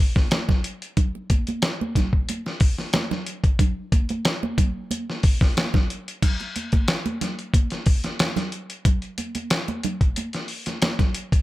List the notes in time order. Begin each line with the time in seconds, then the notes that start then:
0.16 kick, snare, high conga
0.31 snare, closed hi-hat, muted conga, high conga
0.49 kick, snare, muted conga, low conga
0.64 closed hi-hat
0.82 closed hi-hat
0.97 kick, closed hi-hat, low conga
1.15 muted conga
1.30 kick, closed hi-hat, high conga
1.47 closed hi-hat, high conga
1.62 snare, closed hi-hat, muted conga
1.81 high conga
1.95 kick, snare, closed hi-hat, low conga
2.13 kick
2.29 closed hi-hat, high conga
2.46 snare, muted conga
2.60 kick, open hi-hat
2.78 snare, high conga
2.93 snare, closed hi-hat, muted conga, high conga
3.11 snare, muted conga, low conga
3.26 closed hi-hat
3.44 kick, closed hi-hat
3.59 kick, closed hi-hat, low conga
3.92 kick, closed hi-hat, high conga
4.09 closed hi-hat, high conga
4.25 snare, closed hi-hat, muted conga
4.43 muted conga, high conga
4.58 kick, closed hi-hat, low conga
4.91 closed hi-hat, muted conga, high conga
5.10 snare
5.23 kick, open hi-hat
5.41 kick, snare, high conga
5.57 snare, closed hi-hat, muted conga, high conga
5.74 kick, snare, muted conga, low conga
5.90 closed hi-hat
6.08 closed hi-hat
6.22 kick, closed hi-hat, crash, low conga
6.40 closed hi-hat, muted conga
6.56 closed hi-hat, high conga
6.72 kick, closed hi-hat, high conga
6.88 snare, closed hi-hat, muted conga
7.06 closed hi-hat, muted conga, high conga
7.21 snare, closed hi-hat, low conga
7.39 closed hi-hat
7.54 kick, closed hi-hat, high conga
7.70 snare, closed hi-hat
7.86 kick, open hi-hat
8.04 snare, closed hi-hat, high conga
8.19 snare, closed hi-hat, high conga
8.36 snare, closed hi-hat, muted conga, low conga
8.52 closed hi-hat
8.70 closed hi-hat
8.85 kick, closed hi-hat, muted conga, low conga
9.02 closed hi-hat
9.18 closed hi-hat, high conga
9.35 closed hi-hat, high conga
9.50 snare, closed hi-hat, muted conga
9.68 closed hi-hat, muted conga, high conga
9.84 closed hi-hat, low conga
10.01 kick, closed hi-hat
10.16 closed hi-hat, high conga
10.33 snare, closed hi-hat
10.48 open hi-hat
10.66 snare, closed hi-hat, high conga
10.82 snare, closed hi-hat, muted conga, high conga
10.99 kick, snare, closed hi-hat, muted conga, low conga
11.14 closed hi-hat
11.32 kick, closed hi-hat